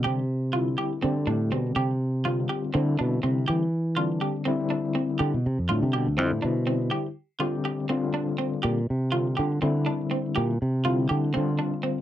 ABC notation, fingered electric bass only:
X:1
M:7/8
L:1/16
Q:1/4=122
K:Gmix
V:1 name="Fingered electric bass" clef=bass
C,6 z2 D,2 A,,2 B,,2 | C,6 z2 D,2 B,,2 C,2 | E,6 z8 | D, B,, C, F,, A,, C, B,, D,, F,, A,, B,,4 |
z12 z2 | _B,,2 C,4 D,2 D,2 z4 | _B,,2 C,4 D,2 D,2 z4 |]